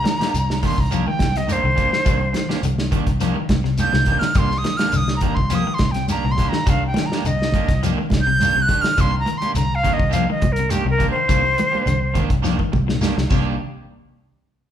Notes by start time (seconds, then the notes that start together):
Already playing: A#5
0.04 D#3, muted clean electric guitar stroke, snare, closed hi-hat, high conga, shekere
0.20 A#3 D4 G4, snare, closed hi-hat, high conga
0.34 C2, muted clean electric guitar stroke, closed hi-hat, high conga, shekere
0.50 snare
0.63 D#3 A#3 D4 G4 C6, kick, snare, open hi-hat, high conga, low conga, shekere
0.77 C2 A#5, muted clean electric guitar stroke, kick
0.91 D#3 F3 A#3 D4 G4, closed hi-hat, high conga, shekere
1.06 D#3 G5, muted clean electric guitar stroke, high conga
1.19 C2, muted clean electric guitar stroke, kick, snare, closed hi-hat, high conga, shekere
1.36 C3 D#5, snare, closed hi-hat
1.47 D#3 A#3 D4 G4, closed hi-hat, high conga, shekere
1.52 C5
1.63 C2 D3, muted clean electric guitar stroke
1.76 A#3 D4 G4, muted clean electric guitar stroke, kick, closed hi-hat, low conga, shekere
1.91 D#3, muted clean electric guitar stroke, muted fingered electric bass stroke, snare
2.05 C2 D#3 G3 A#3 D4, muted clean electric guitar stroke, kick, closed hi-hat, high conga, shekere
2.20 muted clean electric guitar stroke
2.33 muted clean electric guitar stroke, snare, closed hi-hat, high conga, shekere
2.37 D#3
2.49 A#3 D4 G4, snare, high conga
2.62 C2 D3, muted clean electric guitar stroke, closed hi-hat, high conga, low conga, shekere
2.78 snare
2.91 D#3 A#3 D4 G4, kick, closed hi-hat, low conga, shekere
3.07 C2, muted clean electric guitar stroke, kick, closed hi-hat
3.21 D#3 F3 A#3 D4 G4, snare, closed hi-hat, high conga, shekere
3.36 D#3, muted clean electric guitar stroke, high conga
3.49 C2, muted clean electric guitar stroke, kick, snare, closed hi-hat, high conga, shekere
3.64 C3, snare
3.78 D#3 A#3 D4 G4 G6, snare, closed hi-hat, high conga, shekere
3.93 C2 C3, muted clean electric guitar stroke, snare, high conga
4.02 closed hi-hat, high conga
4.06 D#3 A#3 D4 G4, kick, shekere
4.12 low conga
4.19 D#3 F6, muted clean electric guitar stroke, snare, closed hi-hat
4.23 low conga
4.34 C2 D#3 G3 A#3 D4 G4 C6, kick, snare, closed hi-hat, high conga, shekere
4.51 muted clean electric guitar stroke, snare
4.58 D#6
4.63 D#3, muted clean electric guitar stroke, snare, closed hi-hat, high conga, shekere
4.77 A#3 D4 G4 F6, snare, closed hi-hat, high conga
4.92 C2 D3, muted clean electric guitar stroke, closed hi-hat, high conga, low conga, shekere
4.97 D#6
5.08 snare
5.17 A#5
5.21 D#3 A#3 D4 G4, kick, closed hi-hat, low conga, shekere
5.35 C2 C6, muted clean electric guitar stroke, kick
5.50 F3 A#3 G4, muted clean electric guitar stroke, snare, closed hi-hat, high conga, shekere
5.55 D#6
5.65 D#3, muted clean electric guitar stroke, high conga
5.74 C6
5.78 C2, muted clean electric guitar stroke, kick, snare, closed hi-hat, high conga, shekere
5.91 G5, snare, closed hi-hat
5.96 C3
6.08 D#3 A#3 D4 G4 A#5, snare, closed hi-hat, high conga, shekere
6.24 C2 A#2, muted clean electric guitar stroke
6.31 C6
6.37 D#3 A#3 D4 G4, kick, snare, closed hi-hat, low conga, shekere
6.49 A#5, snare
6.53 D#3, muted clean electric guitar stroke
6.66 C2 D#3 G3 D4 F5, muted clean electric guitar stroke, kick, snare, closed hi-hat, high conga, shekere
6.83 G5, muted clean electric guitar stroke
6.94 D#3, snare, closed hi-hat, high conga, shekere
6.98 muted clean electric guitar stroke
7.06 A#5, high conga
7.12 A#3 D4 G4, snare
7.24 C2 D3 D#5, muted clean electric guitar stroke, closed hi-hat, high conga, shekere
7.42 snare
7.52 D#3 A#3 D4 G4, kick, closed hi-hat, high conga, low conga, shekere
7.68 C2, muted clean electric guitar stroke, kick, snare, closed hi-hat
7.82 D#3 F3 A#3 D4 G4, snare, closed hi-hat, high conga, shekere
7.97 D#3, muted clean electric guitar stroke, high conga
8.10 C2, muted clean electric guitar stroke, kick, snare, closed hi-hat, high conga, shekere
8.21 G6
8.27 C3
8.40 D#3 A#3 D4 G4, snare, closed hi-hat, high conga, low conga, shekere
8.55 C2 C3, muted clean electric guitar stroke
8.62 F#6
8.68 D#3 D4 G4, kick, snare, closed hi-hat, low conga, shekere
8.81 F6, muted fingered electric bass stroke, muted clean electric guitar stroke, snare, closed hi-hat
8.86 D#3
8.97 C2 D#3 A#3 D4 G4 C6, muted clean electric guitar stroke, kick, closed hi-hat, high conga, shekere
9.12 muted clean electric guitar stroke
9.19 A#5
9.25 D#3, muted clean electric guitar stroke, closed hi-hat, high conga, shekere
9.38 C6
9.42 A#3 D4 G4, closed hi-hat, high conga
9.54 C2 D3 A#5, muted clean electric guitar stroke, closed hi-hat, shekere
9.75 F5
9.83 D#3 A#3 D4 G4, kick, closed hi-hat, low conga, shekere
9.93 D#5
9.99 C2, muted clean electric guitar stroke, kick
10.10 A#3 D4 G4 F5, muted clean electric guitar stroke, closed hi-hat, shekere
10.14 F3, high conga
10.26 muted clean electric guitar stroke, high conga
10.30 D#3 D#5
10.41 C2, muted clean electric guitar stroke, kick, closed hi-hat, high conga, shekere
10.52 A#4, closed hi-hat
10.59 C3
10.69 D#3 A#3 D4 G4, closed hi-hat, high conga, shekere
10.84 C2 C3, muted clean electric guitar stroke
10.90 A#4
10.98 D#3 A#3 D4 G4, kick, closed hi-hat, low conga, shekere
11.11 C5, muted clean electric guitar stroke
11.16 D#3
11.28 C2 D#3 G3 A#3 D4 G4, kick, closed hi-hat, high conga, shekere
11.43 muted clean electric guitar stroke
11.58 D#3, muted clean electric guitar stroke, closed hi-hat, high conga, shekere
11.72 A#3 D4 G4, high conga
11.85 C2 D3, muted clean electric guitar stroke, closed hi-hat, high conga, low conga, shekere
12.14 D#3 A#3 D4 G4, kick, closed hi-hat, high conga, low conga, shekere
12.30 C2, muted clean electric guitar stroke, kick, closed hi-hat
12.42 D#3 F3 A#3 D4 G4, snare, shekere
12.59 D#3, muted clean electric guitar stroke, kick, high conga
12.72 C2, muted clean electric guitar stroke, kick, high conga, shekere
12.88 A#2, snare
13.01 D#3 A#3 D4 G4, snare, high conga, shekere
13.17 C2, muted clean electric guitar stroke, snare
13.30 C2 C3 D#3 A#3 D4 G4, kick, crash, low conga, shekere